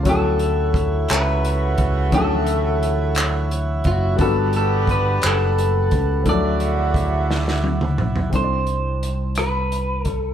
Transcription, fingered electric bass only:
\new Staff \with { instrumentName = "Fingered electric bass" } { \clef bass \time 6/8 \key d \major \tempo 4. = 58 d,4. cis,4 cis,8 | d,2~ d,8 fis,,8 | g,,4. fis,,4 cis,8 | d,2~ d,8 b,,8 |
c,2. | }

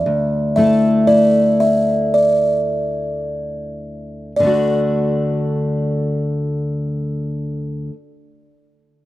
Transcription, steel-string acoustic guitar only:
\new Staff \with { instrumentName = "Steel-string acoustic guitar" } { \time 4/4 \key d \major \tempo 4 = 51 << { r8 <a e' a'>8 e'2. | <d a d' fis'>1 | } \\ { d,1 | d,1 | } >> }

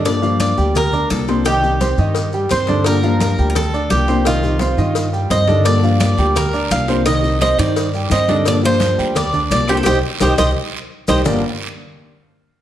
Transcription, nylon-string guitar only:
\new Staff \with { instrumentName = "Nylon-string guitar" } { \time 4/4 \key g \minor \tempo 4 = 171 <d f bes d' g'>8 <f bes d' g'>8 <f bes d' g'>4 r4 <f bes d' g'>8 <f bes d' g'>8 | <c ees g c' g'>8 <ees g c' g'>8 <ees g c' g'>4 r4 <ees g c' g'>8 <ees g c' g'>8 | <d f bes d' g'>8 <f bes d' g'>8 <f bes d' g'>4 r4 <f bes d' g'>8 <f bes d' g'>8 | <c ees g c' g'>8 <ees g c' g'>8 <ees g c' g'>4 r4 <ees g c' g'>8 <ees g c' g'>8 |
<d f bes d' g'>8 <f bes d' g'>8 <f bes d' g'>4 r4 <f bes d' g'>8 <f bes d' g'>8 | <c ees g c' g'>8 <ees g c' g'>8 <ees g c' g'>4 r4 <ees g c' g'>8 <ees g c' g'>8 | <d f bes d' g'>8 <f bes d' g'>8 <f bes d' g'>4 r4 <f bes d' g'>8 <f bes d' g'>8 | <ees g c'>8 r8 <ees g c'>8 <ees g c'>8 r4. <ees g c'>8 |
<g, d f bes d' g'>8 r2. r8 | }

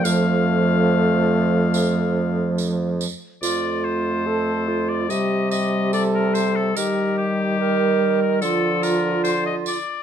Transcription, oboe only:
\new Staff \with { instrumentName = "Oboe" } { \time 4/4 \key f \mixolydian \tempo 4 = 72 f''2. r4 | d''8 c''4~ c''16 d''16 ees''8 ees''8 d''16 bes'16 c''16 a'16 | bes'8 g'4~ g'16 bes'16 a'8 bes'8 c''16 ees''16 d''8 | }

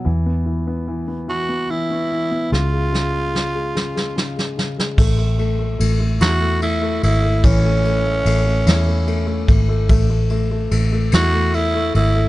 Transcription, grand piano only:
\new Staff \with { instrumentName = "Grand piano" } { \time 6/8 \key fis \minor \tempo 4. = 49 e16 b16 e16 b16 e16 b16 e16 b16 e16 b16 e16 b16 | cis16 gis16 cis16 gis16 cis16 gis16 cis16 gis16 cis16 gis16 cis16 gis16 | a16 a16 a16 a16 a16 a16 e'16 a16 a16 a16 a16 a16 | e16 a16 a16 a16 a16 a16 e'16 a16 a16 a16 a16 a16 |
a16 a16 a16 a16 a16 a16 e'16 a16 a16 a16 a16 a16 | }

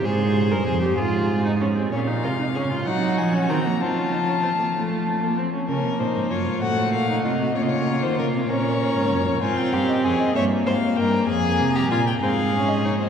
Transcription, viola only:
\new Staff \with { instrumentName = "Viola" } { \time 6/8 \key f \minor \tempo 4. = 64 aes'8. bes'16 aes'16 g'16 f'8. ees'16 des'16 c'16 | \key bes \minor des'16 ees'16 f'16 ees'16 des'16 f'16 ees'8. des'16 c'16 bes16 | c'16 des'16 ees'16 des'16 c'16 bes16 a8. bes16 c'16 des'16 | bes4. a4. |
bes4. des'4. | c'4. bes4.~ | bes4. c'8 des'8 ees'8 | }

